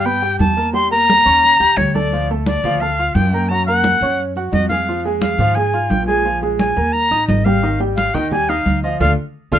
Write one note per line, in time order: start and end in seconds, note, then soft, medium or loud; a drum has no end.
0.00 0.36 G2 medium
0.05 0.19 B3 medium
0.05 0.20 B4 medium
0.05 0.39 G5 loud
0.05 0.20 B5 medium
0.05 high conga soft
0.22 0.51 G4 medium
0.22 0.51 G5 medium
0.22 0.51 G6 medium
0.22 high conga soft
0.39 1.20 E2 loud
0.39 0.72 A5 medium
0.39 high conga medium
0.57 0.71 A#3 medium
0.57 0.71 A#4 medium
0.57 0.71 A#5 medium
0.57 high conga soft
0.73 0.88 G3 medium
0.73 0.88 G4 medium
0.73 0.88 G5 medium
0.73 0.90 C6 loud
0.73 high conga soft
0.91 1.19 A#3 medium
0.91 1.19 A#4 medium
0.91 1.20 A#5 medium
0.91 1.79 A#5 loud
0.91 high conga soft
1.10 high conga medium
1.25 1.58 D#2 medium
1.25 1.54 C#4 medium
1.25 1.54 C#5 medium
1.25 1.54 C#6 medium
1.25 high conga soft
1.44 high conga soft
1.60 1.76 D#2 medium
1.60 1.88 G4 medium
1.60 1.89 G5 medium
1.60 1.89 G6 medium
1.60 high conga soft
1.77 2.58 D2 loud
1.77 1.96 C#5 loud
1.77 high conga medium
1.94 2.09 A3 medium
1.94 2.09 A4 medium
1.94 2.29 D5 medium
1.94 2.09 A5 medium
1.94 high conga medium
2.13 2.27 F3 medium
2.13 2.27 F4 medium
2.13 2.27 F5 medium
2.13 high conga soft
2.30 2.58 A3 medium
2.30 2.58 A4 medium
2.30 2.59 A5 medium
2.30 high conga soft
2.46 2.82 D5 medium
2.46 high conga medium
2.63 3.12 D2 medium
2.63 2.79 F3 medium
2.63 2.79 F4 medium
2.63 2.79 F5 medium
2.63 high conga soft
2.63 low conga medium
2.81 2.95 A3 medium
2.81 2.96 A4 medium
2.81 3.16 F5 loud
2.81 2.96 A5 medium
2.81 high conga soft
2.98 3.27 F4 medium
2.98 3.27 F5 medium
2.98 3.27 F6 medium
2.98 high conga soft
3.15 3.96 F#2 loud
3.15 3.50 G5 medium
3.15 high conga medium
3.32 3.47 A#3 medium
3.32 3.47 A#4 medium
3.32 3.48 A#5 medium
3.32 high conga soft
3.49 3.64 F#3 medium
3.49 3.65 F#4 medium
3.49 3.65 F#5 medium
3.49 3.65 A#5 loud
3.49 high conga soft
3.66 3.96 A#3 medium
3.66 3.96 A#4 medium
3.66 4.22 F#5 loud
3.66 3.96 A#5 medium
3.66 high conga soft
3.84 high conga medium
4.01 4.49 F#2 medium
4.01 4.30 C#4 medium
4.01 4.30 C#5 medium
4.01 4.31 C#6 medium
4.01 high conga soft
4.18 high conga soft
4.36 4.65 F#4 medium
4.36 4.65 F#5 medium
4.36 4.65 F#6 medium
4.36 high conga soft
4.52 5.34 F2 medium
4.52 4.68 D#5 loud
4.52 high conga medium
4.69 4.85 G#3 medium
4.69 4.85 G#4 medium
4.69 5.02 F5 medium
4.69 4.85 G#5 medium
4.69 high conga medium
4.87 5.02 F3 medium
4.87 5.03 F4 medium
4.87 5.03 F5 medium
4.87 high conga soft
5.04 5.34 G#3 medium
5.04 5.33 G#4 medium
5.04 5.34 G#5 medium
5.04 high conga soft
5.21 5.57 F5 medium
5.21 high conga loud
5.38 5.87 G#2 medium
5.38 5.54 F3 medium
5.38 5.54 F4 medium
5.38 5.54 F5 medium
5.38 high conga soft
5.38 low conga medium
5.55 5.71 G#3 medium
5.55 5.71 G#4 medium
5.55 5.91 G#5 loud
5.55 5.71 G#5 medium
5.55 high conga soft
5.74 6.02 F4 medium
5.74 6.02 F5 medium
5.74 6.02 F6 medium
5.74 high conga soft
5.90 6.71 A#1 loud
5.90 6.06 G5 loud
5.90 high conga medium
6.07 6.22 G#3 medium
6.07 6.22 G#4 medium
6.07 6.39 G#5 medium
6.07 6.23 G#5 medium
6.07 high conga soft
6.25 6.39 F3 medium
6.25 6.39 F4 medium
6.25 6.40 F5 medium
6.25 high conga soft
6.42 6.71 G#3 medium
6.42 6.71 G#4 medium
6.42 6.71 G#5 medium
6.42 high conga soft
6.59 6.94 G#5 medium
6.59 high conga medium
6.77 7.09 D#2 medium
6.77 7.05 A#3 medium
6.77 7.05 A#4 medium
6.77 7.05 A#5 medium
6.77 high conga soft
6.93 7.27 A#5 loud
6.93 high conga soft
7.11 7.27 A1 medium
7.11 7.40 D#4 medium
7.11 7.40 D#5 medium
7.11 7.40 D#6 medium
7.11 high conga soft
7.28 8.09 G#1 loud
7.28 7.46 D#5 medium
7.28 high conga medium
7.45 7.60 G3 medium
7.45 7.60 G4 medium
7.45 7.80 F5 medium
7.45 7.60 G5 medium
7.45 high conga medium
7.63 7.77 D#3 medium
7.63 7.77 D#4 medium
7.63 7.78 D#5 medium
7.63 high conga soft
7.80 8.08 G3 medium
7.80 8.09 G4 medium
7.80 8.09 G5 medium
7.80 high conga soft
7.96 8.16 F5 medium
7.96 high conga medium
8.14 8.63 D#2 medium
8.14 8.29 D#3 medium
8.14 8.29 D#4 medium
8.14 8.29 D#5 medium
8.14 8.31 G5 medium
8.14 high conga soft
8.14 low conga medium
8.31 8.46 G3 medium
8.31 8.46 G4 medium
8.31 8.47 G5 medium
8.31 8.51 G#5 loud
8.31 high conga soft
8.31 low conga medium
8.49 8.77 D#4 medium
8.49 8.78 D#5 medium
8.49 8.82 F5 medium
8.49 8.78 D#6 medium
8.49 high conga soft
8.66 8.98 D2 medium
8.66 high conga medium
8.83 8.98 F3 medium
8.83 8.98 F4 medium
8.83 8.99 D#5 medium
8.83 8.98 F5 medium
8.83 high conga soft
9.00 9.13 D2 loud
9.00 9.12 D4 medium
9.00 9.12 F4 loud
9.00 9.12 A4 loud
9.00 9.12 F5 loud
9.00 low conga loud
9.52 9.59 D2 medium
9.52 9.59 D4 loud
9.52 9.59 F4 loud
9.52 9.59 A4 loud
9.52 9.59 F5 medium
9.52 low conga loud